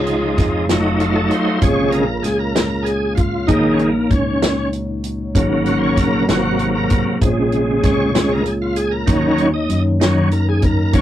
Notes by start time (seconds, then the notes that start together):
Already playing: C#2 C3 C#3 F3 G#3 D#4 F4 G#4 C#5 F5
0.07 closed hi-hat
0.38 F2, kick, snare, closed hi-hat
0.68 F1 F#3 A3 D#4 F4 F#4 C#5, snare, closed hi-hat
0.77 D#5
1.00 F4, closed hi-hat
1.16 A4
1.31 C5, closed hi-hat
1.59 A#1 A#2 C#3 G#3 A#3 F4 G#4 C#5, kick, closed hi-hat
1.64 C3 G#3 C#5
1.91 A#4, closed hi-hat
2.20 G#4 A#4
2.24 C#2, snare, closed hi-hat
2.39 A#4
2.56 snare, closed hi-hat
2.83 G#4, closed hi-hat
3.15 F4, kick, closed hi-hat
3.46 A#1 A#2 D#3 F#3 G#3 A3 A#3 D#4 F#4, kick, closed hi-hat
3.51 A#3 C#5
3.73 C#4
3.79 A#3, closed hi-hat
4.10 C#2 C#4, kick, closed hi-hat
4.42 snare, closed hi-hat
4.73 closed hi-hat
5.04 closed hi-hat
5.34 G#1 G#2 C#3 F#3 G#3 A#3 C#4 D#4 F#4 C#5, kick, closed hi-hat
5.66 F#4, closed hi-hat
5.78 C5
5.84 C#5
5.97 A#1 A#4, kick, snare, closed hi-hat
6.27 G#1 G#2 C3 F#3 G#3 A#3 C4 D#4 F#4 B4, snare, closed hi-hat
6.36 C5
6.59 F#4, closed hi-hat
6.75 A#4
6.90 kick, closed hi-hat
7.19 A#1 A#2 C#3 G#3 A#3 F4 G#4, kick, closed hi-hat
7.23 C3 C5
7.30 C#5
7.52 closed hi-hat
7.83 C#2 C#5, kick, snare, closed hi-hat
8.14 C3 C#3 G#3, snare, closed hi-hat
8.32 A#4
8.46 G#4, closed hi-hat
8.62 F4
8.76 G#4, closed hi-hat
8.91 A#4
9.05 D#2 D#3 F#3 A#3 C#4 D#4 F#4, kick, closed hi-hat
9.11 C#5
9.38 C#5, closed hi-hat
9.54 D#5
9.69 F#2, closed hi-hat
10.00 D#3 F#3 C#4, snare, closed hi-hat
10.31 A#4, closed hi-hat
10.49 G#4
10.62 A#4, kick, closed hi-hat
10.92 G#1 G#2 F#3 G#3 A#3 C#4 D#4 F#4 C5 C#5, kick, closed hi-hat